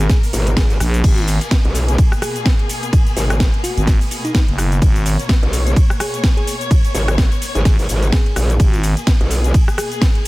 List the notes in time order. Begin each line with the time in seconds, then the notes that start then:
Already playing: B2 A#3 A#4
0.00 shaker
0.09 G#4, kick, snare, closed hi-hat, ride, shaker
0.23 open hi-hat, shaker
0.33 G#1, open hi-hat, shaker
0.47 closed hi-hat, shaker
0.57 G#1 G#4, kick, snare, closed hi-hat, ride, shaker
0.70 closed hi-hat, shaker
0.80 A#1, cross-stick, open hi-hat, shaker
0.94 closed hi-hat, shaker
1.04 G#1 G#4, kick, closed hi-hat, crash, ride, shaker
1.18 closed hi-hat, shaker
1.28 open hi-hat, shaker
1.41 closed hi-hat, shaker
1.51 kick, snare, closed hi-hat, ride, shaker
1.65 B1, closed hi-hat
1.75 open hi-hat, shaker
1.88 closed hi-hat, shaker
1.98 kick, closed hi-hat, ride, shaker
2.12 cross-stick, shaker
2.22 G#4, cross-stick, open hi-hat, shaker
2.36 closed hi-hat, shaker
2.46 kick, snare, closed hi-hat, ride, shaker
2.59 closed hi-hat
2.69 open hi-hat, shaker
2.83 closed hi-hat, shaker
2.93 kick, closed hi-hat, ride, shaker
3.07 closed hi-hat, shaker
3.17 G#1, open hi-hat, shaker
3.30 cross-stick, closed hi-hat, shaker
3.40 kick, snare, closed hi-hat, ride, shaker
3.54 closed hi-hat
3.64 F#4, open hi-hat, shaker
3.77 G#1, closed hi-hat, shaker
3.87 kick, snare, closed hi-hat, ride, shaker
4.01 open hi-hat, shaker
4.11 open hi-hat, shaker
4.25 D#4, closed hi-hat, shaker
4.35 D#4, kick, snare, closed hi-hat, ride, shaker
4.48 F#1, closed hi-hat
4.58 cross-stick, open hi-hat, shaker
4.72 closed hi-hat, shaker
4.82 G#1 C#5, kick, closed hi-hat, ride, shaker
4.96 closed hi-hat, shaker
5.06 open hi-hat, shaker
5.19 closed hi-hat, shaker
5.29 kick, snare, closed hi-hat, ride, shaker
5.43 B1, closed hi-hat
5.53 open hi-hat, shaker
5.67 closed hi-hat, shaker
5.76 kick, closed hi-hat, ride, shaker
5.90 cross-stick, shaker
6.00 G#4, cross-stick, open hi-hat, shaker
6.14 closed hi-hat, shaker
6.24 kick, snare, closed hi-hat, ride, shaker
6.37 G#4, closed hi-hat
6.47 open hi-hat, shaker
6.61 closed hi-hat, shaker
6.71 kick, closed hi-hat, ride, shaker
6.85 closed hi-hat, shaker
6.94 G#1, open hi-hat, shaker
7.08 cross-stick, closed hi-hat, shaker
7.18 kick, snare, closed hi-hat, ride, shaker
7.32 closed hi-hat, shaker
7.42 open hi-hat, shaker
7.55 G#1 G#4, closed hi-hat, shaker
7.65 G#1 G#4, kick, snare, closed hi-hat, ride, shaker
7.79 G#1, open hi-hat, shaker
7.89 G#1, open hi-hat, shaker
8.03 closed hi-hat, shaker
8.12 G#4, kick, snare, closed hi-hat, ride, shaker
8.26 closed hi-hat
8.36 A#1, cross-stick, open hi-hat, shaker
8.50 closed hi-hat, shaker
8.60 G#1 G#4, kick, closed hi-hat, ride, shaker
8.73 closed hi-hat, shaker
8.83 open hi-hat, shaker
8.97 closed hi-hat, shaker
9.07 kick, snare, closed hi-hat, ride, shaker
9.21 B1, closed hi-hat
9.31 open hi-hat, shaker
9.44 closed hi-hat, shaker
9.54 kick, closed hi-hat, ride, shaker
9.68 cross-stick, shaker
9.78 G#4, cross-stick, open hi-hat, shaker
9.92 closed hi-hat, shaker
10.02 kick, snare, closed hi-hat, ride, shaker
10.15 closed hi-hat